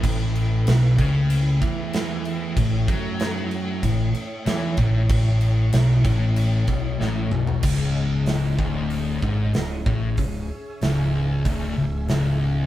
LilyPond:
<<
  \new Staff \with { instrumentName = "String machine" } { \time 4/4 \key cis \minor \tempo 4 = 95 << { <e' b'>1 | cis''1~ | cis''1 | dis''1 |
e''1 | } \\ { a1~ | a1~ | a1 | <cis' gis'>1~ |
<cis' gis'>1 | } >> }
  \new Staff \with { instrumentName = "Distorted electric guitar" } { \clef bass \time 4/4 \key cis \minor a,4 b,8 cis4 e4. | a,8 fis4. a,8 r8 e8 a,8~ | a,4 b,8 a,4 b,8 a,8 b,8 | cis,4. d,4 gis,8 cis,8 a,8 |
cis,8 r8 cis,4 d,8 cis,8 cis,4 | }
  \new Staff \with { instrumentName = "Distorted electric guitar" } { \clef bass \time 4/4 \key cis \minor a,4 b,8 cis4 e4. | a,8 fis4. a,8 r8 e8 a,8~ | a,4 b,8 a,4 b,8 a,8 b,8 | cis,4. d,4 gis,8 cis,8 a,8 |
cis,8 r8 cis,4 d,8 cis,8 cis,4 | }
  \new Staff \with { instrumentName = "Fingered electric bass" } { \clef bass \time 4/4 \key cis \minor a,,4 b,,8 cis,4 e,4. | a,,8 fis,4. a,,8 r8 e,8 a,,8~ | a,,4 b,,8 a,,4 b,,8 a,,8 b,,8 | cis,,4. d,,4 gis,,8 cis,,8 a,,8 |
cis,,8 r8 cis,,4 d,,8 cis,,8 cis,,4 | }
  \new DrumStaff \with { instrumentName = "Drums" } \drummode { \time 4/4 <cymc bd>8 cymc8 <cymc sn>8 <cymc bd>8 cymc8 <cymc bd>8 <cymc sn>8 cymc8 | <cymc bd>8 <cymc bd>8 <cymc sn>8 cymc8 <cymc bd>8 cymc8 <cymc sn>8 <cymc bd>8 | <cymc bd>8 cymc8 <cymc sn>8 <cymc bd>8 cymc8 <cymc bd>8 sn8 toml16 tomfh16 | <cymc bd>4 <hho sn>8 bd8 hho8 bd8 <hho sn>8 bd8 |
<hho bd>4 <hho sn>4 <hho bd>4 <hho sn>4 | }
>>